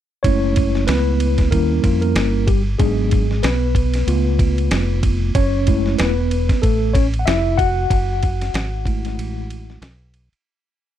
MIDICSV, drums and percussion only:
0, 0, Header, 1, 2, 480
1, 0, Start_track
1, 0, Key_signature, 3, "minor"
1, 0, Tempo, 638298
1, 184, Time_signature, 4, 2, 24, 8
1, 8258, End_track
2, 0, Start_track
2, 0, Title_t, "Drums"
2, 183, Note_on_c, 9, 51, 73
2, 184, Note_on_c, 9, 36, 107
2, 259, Note_off_c, 9, 36, 0
2, 259, Note_off_c, 9, 51, 0
2, 421, Note_on_c, 9, 51, 60
2, 430, Note_on_c, 9, 36, 73
2, 496, Note_off_c, 9, 51, 0
2, 506, Note_off_c, 9, 36, 0
2, 566, Note_on_c, 9, 38, 33
2, 641, Note_off_c, 9, 38, 0
2, 659, Note_on_c, 9, 44, 48
2, 659, Note_on_c, 9, 51, 63
2, 667, Note_on_c, 9, 38, 97
2, 734, Note_off_c, 9, 44, 0
2, 734, Note_off_c, 9, 51, 0
2, 742, Note_off_c, 9, 38, 0
2, 903, Note_on_c, 9, 51, 57
2, 979, Note_off_c, 9, 51, 0
2, 1037, Note_on_c, 9, 51, 41
2, 1041, Note_on_c, 9, 36, 81
2, 1049, Note_on_c, 9, 38, 29
2, 1112, Note_off_c, 9, 51, 0
2, 1116, Note_off_c, 9, 36, 0
2, 1124, Note_off_c, 9, 38, 0
2, 1145, Note_on_c, 9, 36, 72
2, 1145, Note_on_c, 9, 51, 60
2, 1220, Note_off_c, 9, 36, 0
2, 1220, Note_off_c, 9, 51, 0
2, 1381, Note_on_c, 9, 36, 89
2, 1381, Note_on_c, 9, 51, 55
2, 1457, Note_off_c, 9, 36, 0
2, 1457, Note_off_c, 9, 51, 0
2, 1520, Note_on_c, 9, 51, 32
2, 1595, Note_off_c, 9, 51, 0
2, 1621, Note_on_c, 9, 44, 46
2, 1621, Note_on_c, 9, 51, 70
2, 1625, Note_on_c, 9, 38, 94
2, 1697, Note_off_c, 9, 44, 0
2, 1697, Note_off_c, 9, 51, 0
2, 1700, Note_off_c, 9, 38, 0
2, 1862, Note_on_c, 9, 36, 92
2, 1862, Note_on_c, 9, 51, 57
2, 1937, Note_off_c, 9, 36, 0
2, 1937, Note_off_c, 9, 51, 0
2, 2102, Note_on_c, 9, 51, 68
2, 2103, Note_on_c, 9, 36, 127
2, 2177, Note_off_c, 9, 51, 0
2, 2178, Note_off_c, 9, 36, 0
2, 2342, Note_on_c, 9, 51, 53
2, 2351, Note_on_c, 9, 36, 71
2, 2417, Note_off_c, 9, 51, 0
2, 2426, Note_off_c, 9, 36, 0
2, 2488, Note_on_c, 9, 38, 32
2, 2563, Note_off_c, 9, 38, 0
2, 2582, Note_on_c, 9, 44, 47
2, 2582, Note_on_c, 9, 51, 59
2, 2589, Note_on_c, 9, 38, 92
2, 2657, Note_off_c, 9, 44, 0
2, 2657, Note_off_c, 9, 51, 0
2, 2665, Note_off_c, 9, 38, 0
2, 2819, Note_on_c, 9, 36, 94
2, 2825, Note_on_c, 9, 51, 53
2, 2894, Note_off_c, 9, 36, 0
2, 2900, Note_off_c, 9, 51, 0
2, 2960, Note_on_c, 9, 51, 46
2, 2971, Note_on_c, 9, 38, 28
2, 3035, Note_off_c, 9, 51, 0
2, 3047, Note_off_c, 9, 38, 0
2, 3066, Note_on_c, 9, 51, 60
2, 3141, Note_off_c, 9, 51, 0
2, 3302, Note_on_c, 9, 36, 88
2, 3304, Note_on_c, 9, 51, 49
2, 3378, Note_off_c, 9, 36, 0
2, 3379, Note_off_c, 9, 51, 0
2, 3444, Note_on_c, 9, 51, 35
2, 3520, Note_off_c, 9, 51, 0
2, 3542, Note_on_c, 9, 44, 48
2, 3542, Note_on_c, 9, 51, 70
2, 3545, Note_on_c, 9, 38, 94
2, 3617, Note_off_c, 9, 44, 0
2, 3617, Note_off_c, 9, 51, 0
2, 3621, Note_off_c, 9, 38, 0
2, 3783, Note_on_c, 9, 36, 85
2, 3783, Note_on_c, 9, 51, 63
2, 3858, Note_off_c, 9, 36, 0
2, 3858, Note_off_c, 9, 51, 0
2, 4023, Note_on_c, 9, 36, 112
2, 4023, Note_on_c, 9, 51, 75
2, 4098, Note_off_c, 9, 36, 0
2, 4098, Note_off_c, 9, 51, 0
2, 4262, Note_on_c, 9, 51, 57
2, 4271, Note_on_c, 9, 36, 84
2, 4338, Note_off_c, 9, 51, 0
2, 4346, Note_off_c, 9, 36, 0
2, 4406, Note_on_c, 9, 38, 34
2, 4481, Note_off_c, 9, 38, 0
2, 4501, Note_on_c, 9, 44, 44
2, 4501, Note_on_c, 9, 51, 65
2, 4509, Note_on_c, 9, 38, 101
2, 4576, Note_off_c, 9, 44, 0
2, 4576, Note_off_c, 9, 51, 0
2, 4584, Note_off_c, 9, 38, 0
2, 4747, Note_on_c, 9, 51, 51
2, 4822, Note_off_c, 9, 51, 0
2, 4883, Note_on_c, 9, 36, 80
2, 4884, Note_on_c, 9, 51, 40
2, 4896, Note_on_c, 9, 38, 34
2, 4958, Note_off_c, 9, 36, 0
2, 4959, Note_off_c, 9, 51, 0
2, 4971, Note_off_c, 9, 38, 0
2, 4987, Note_on_c, 9, 36, 78
2, 4989, Note_on_c, 9, 51, 58
2, 5062, Note_off_c, 9, 36, 0
2, 5064, Note_off_c, 9, 51, 0
2, 5224, Note_on_c, 9, 36, 89
2, 5227, Note_on_c, 9, 51, 59
2, 5299, Note_off_c, 9, 36, 0
2, 5302, Note_off_c, 9, 51, 0
2, 5367, Note_on_c, 9, 51, 36
2, 5442, Note_off_c, 9, 51, 0
2, 5468, Note_on_c, 9, 44, 52
2, 5468, Note_on_c, 9, 51, 69
2, 5472, Note_on_c, 9, 38, 100
2, 5544, Note_off_c, 9, 44, 0
2, 5544, Note_off_c, 9, 51, 0
2, 5547, Note_off_c, 9, 38, 0
2, 5704, Note_on_c, 9, 36, 86
2, 5707, Note_on_c, 9, 51, 56
2, 5779, Note_off_c, 9, 36, 0
2, 5783, Note_off_c, 9, 51, 0
2, 5945, Note_on_c, 9, 36, 106
2, 5947, Note_on_c, 9, 51, 72
2, 6020, Note_off_c, 9, 36, 0
2, 6022, Note_off_c, 9, 51, 0
2, 6186, Note_on_c, 9, 51, 51
2, 6192, Note_on_c, 9, 36, 79
2, 6261, Note_off_c, 9, 51, 0
2, 6267, Note_off_c, 9, 36, 0
2, 6328, Note_on_c, 9, 51, 41
2, 6331, Note_on_c, 9, 38, 35
2, 6403, Note_off_c, 9, 51, 0
2, 6406, Note_off_c, 9, 38, 0
2, 6425, Note_on_c, 9, 44, 43
2, 6425, Note_on_c, 9, 51, 63
2, 6432, Note_on_c, 9, 38, 103
2, 6500, Note_off_c, 9, 44, 0
2, 6500, Note_off_c, 9, 51, 0
2, 6508, Note_off_c, 9, 38, 0
2, 6659, Note_on_c, 9, 36, 97
2, 6668, Note_on_c, 9, 51, 49
2, 6735, Note_off_c, 9, 36, 0
2, 6743, Note_off_c, 9, 51, 0
2, 6804, Note_on_c, 9, 51, 43
2, 6816, Note_on_c, 9, 38, 32
2, 6879, Note_off_c, 9, 51, 0
2, 6891, Note_off_c, 9, 38, 0
2, 6911, Note_on_c, 9, 51, 64
2, 6986, Note_off_c, 9, 51, 0
2, 7147, Note_on_c, 9, 51, 59
2, 7223, Note_off_c, 9, 51, 0
2, 7293, Note_on_c, 9, 38, 33
2, 7368, Note_off_c, 9, 38, 0
2, 7385, Note_on_c, 9, 44, 50
2, 7385, Note_on_c, 9, 51, 60
2, 7389, Note_on_c, 9, 38, 99
2, 7461, Note_off_c, 9, 44, 0
2, 7461, Note_off_c, 9, 51, 0
2, 7464, Note_off_c, 9, 38, 0
2, 7623, Note_on_c, 9, 51, 59
2, 7698, Note_off_c, 9, 51, 0
2, 7767, Note_on_c, 9, 51, 36
2, 7842, Note_off_c, 9, 51, 0
2, 8258, End_track
0, 0, End_of_file